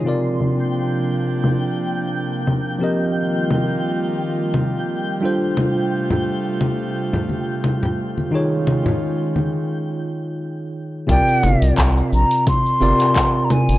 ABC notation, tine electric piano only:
X:1
M:4/4
L:1/8
Q:"Swing 16ths" 1/4=87
K:Cm
V:1 name="Tine electric piano"
[C,CFBd]8 | [F,CGBe]6- [F,CGBe] [G,DF=Ac]- | [G,DF=Ac]8 | [E,EFA_d]8 |
[C,CFBd]4- [C,CFBd] [C,CFBd] z2 |]